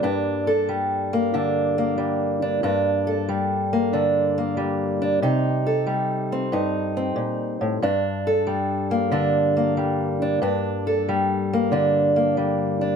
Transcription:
Already playing: G3 A#3
0.03 G2 D4
0.47 A4
0.69 G3
1.13 A#3
1.34 D3 D4
1.78 A#3
1.98 G3
2.42 D4
2.63 G2 D4
3.07 A4
3.29 G3
3.73 A#3
3.93 D3 D4
4.38 A#3
4.57 G3
5.02 D4
5.22 C3 D#4
5.66 A4
5.87 G3
6.32 C4
6.52 G2 D#4
6.97 C4
7.16 A#2
7.61 A2
7.82 G2 D4
8.27 A4
8.47 G3
8.91 A#3
9.11 D3 D4
9.57 A#3
9.77 G3
10.22 D4
10.42 G2 D4
10.87 A4
11.08 G3
11.53 A#3
11.72 D3 D4
12.16 A#3
12.37 G3
12.81 D4

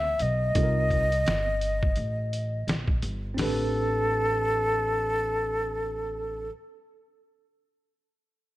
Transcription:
Already playing: D2 E5
0.19 B1 D#5, closed hi-hat
0.55 C2 C4 D#4 F4 A4, kick, closed hi-hat
0.63 A#4
0.90 kick, closed hi-hat
1.12 closed hi-hat
1.26 G1, snare, closed hi-hat
1.61 closed hi-hat
1.83 kick
1.96 A1, closed hi-hat
2.33 closed hi-hat
2.67 A#1, snare, closed hi-hat
2.88 kick
3.02 G1, closed hi-hat
3.34 A1 C4 D4, open hi-hat
3.39 G4 A4 B4, snare

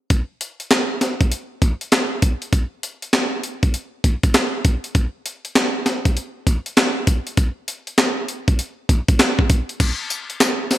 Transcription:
0.10 kick, closed hi-hat
0.41 closed hi-hat
0.60 closed hi-hat
0.71 snare, clap, closed hi-hat
1.01 snare, closed hi-hat
1.21 kick, closed hi-hat
1.32 closed hi-hat
1.62 kick, closed hi-hat
1.81 closed hi-hat
1.92 snare, clap, closed hi-hat
2.22 kick, closed hi-hat
2.42 closed hi-hat
2.53 kick, closed hi-hat
2.83 closed hi-hat
3.02 closed hi-hat
3.13 snare, clap, closed hi-hat
3.44 closed hi-hat
3.63 kick, closed hi-hat
3.74 closed hi-hat
4.04 kick, closed hi-hat
4.23 kick, closed hi-hat
4.34 snare, clap, closed hi-hat
4.65 kick, closed hi-hat
4.84 closed hi-hat
4.95 kick, closed hi-hat
5.26 closed hi-hat
5.45 closed hi-hat
5.55 snare, clap, closed hi-hat
5.86 snare, closed hi-hat
6.05 kick, closed hi-hat
6.17 closed hi-hat
6.47 kick, closed hi-hat
6.66 closed hi-hat
6.77 snare, clap, closed hi-hat
7.07 kick, closed hi-hat
7.27 closed hi-hat
7.37 kick, closed hi-hat
7.68 closed hi-hat
7.87 closed hi-hat
7.98 snare, clap, closed hi-hat
8.28 closed hi-hat
8.48 kick, closed hi-hat
8.59 closed hi-hat
8.89 kick, closed hi-hat
9.08 kick, closed hi-hat
9.19 snare, clap, closed hi-hat
9.39 kick
9.50 kick, closed hi-hat
9.69 closed hi-hat
9.80 kick, closed hi-hat, crash, tambourine
10.10 closed hi-hat, tambourine
10.30 closed hi-hat
10.40 snare, clap, closed hi-hat, tambourine
10.71 snare, open hi-hat, tambourine

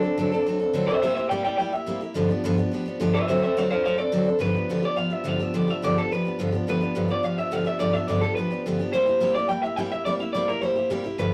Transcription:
Already playing: D4
0.02 C4 D4 A4
0.17 D3 F#3 C4 D4 A4
0.32 C4 D4 A4
0.46 F#3 C4 D4 A4
0.60 C4 D4 A4
0.73 D3 F#3 C4 D4 A4
0.87 C4 D4 A4 C5 E5
1.02 C3 G3 A#3 E4 G4 C5 E5
1.14 E4 G4 C5 E5
1.19 A#3
1.29 C3 G3 A#3 E4 G4 D5 G5
1.44 A#3 E4 G4 D5 G5
1.57 G3 A#3 E4 D5 G5
1.62 G4
1.72 A#3 E4 G4 E5
1.86 C3 G3 A#3 E4 G4
2.01 A#3 E4 G4
2.14 G2 D3 F3 B3 D4 G4
2.29 F3 B3 D4 G4
2.44 G2 D3 F3 B3 D4 G4
2.57 F3 B3 D4 G4
2.72 F3 B3 D4 G4
2.86 F3 B3 D4 G4
3.00 G2 D3 F3 B3 D4 G4
3.14 F3 B3 D4 G4 B4 E5
3.28 D3 F#3 C4 D4 A4 C5 E5
3.42 C4 D4 A4 C5 E5
3.57 D3 F#3 C4 D4 A4 C5 F5
3.70 C4 D4 A4 C5 F5
3.84 F#3 C4 D4 A4 C5 F5
3.98 C4 D4 A4 D5
4.12 D3 F#3 C4 D4 A4
4.26 C4 D4 A4
4.39 G2 D3 F3 B3 D4 G4 B4
4.54 F3 B3 D4 G4
4.69 G2 D3 F3 B3 D4 G4
4.82 F3 B3 D4 G4 D5
4.96 F3 B3 D4 G4 F5
5.10 F3 B3 D4 G4 E5
5.24 G2 D3 F3 B3 D4 G4
5.28 F5
5.39 F3 B3 D4 G4 E5
5.54 G2 D3 F3 B3 D4 G4 D5
5.68 F3 B3 D4 G4 E5
5.82 G2 D3 F3 B3 D4 G4 D5
5.97 F3 B3 D4 G4 A4
6.12 F3 B3 D4 G4 B4
6.25 F3 B3 D4 G4
6.39 G2 D3 F3 B3 D4 G4
6.52 F3 B3 D4 G4
6.67 G2 D3 F3 B3 D4 G4 B4
6.81 F3 B3 D4 G4
6.95 G2 D3 F3 B3 D4 G4
7.08 F3 B3 D4 G4 D5
7.23 F3 B3 D4 G4 F5
7.38 F3 B3 D4 G4 E5
7.51 G2 D3 F3 B3 D4 G4 F5
7.64 F3 B3 D4 G4 E5
7.79 G2 D3 F3 B3 D4 G4 D5
7.93 F3 B3 D4 G4 E5
8.07 G2 D3 F3 B3 D4 G4 D5
8.21 F3 B3 D4 G4 A4
8.35 F3 B3 D4 B4
8.40 G4
8.50 F3 B3 D4 G4
8.66 G2 D3 F3 B3 D4 G4
8.79 F3 B3 D4 G4
8.93 C3 G3 A#3 E4 G4 C5
9.06 A#3 E4 G4
9.20 C3 G3 A#3 E4 G4
9.35 A#3 E4 G4 D5
9.49 G3 A#3 E4 G4 G5
9.63 A#3 E4 G4 E5
9.76 C3 G3 A#3 E4 G4 G5
9.92 A#3 E4 G4 E5
10.05 C3 G3 A#3 E4 G4 D5
10.20 A#3 E4 G4 E5
10.33 C3 G3 A#3 E4 G4 D5
10.48 A#3 E4 G4 A#4
10.61 G3 A#3 E4 G4 C5
10.76 A#3 E4 G4
10.90 C3 G3 A#3 E4 G4
11.04 A#3 E4 G4
11.18 G2 D3 F3 B3 F4 G4 B4

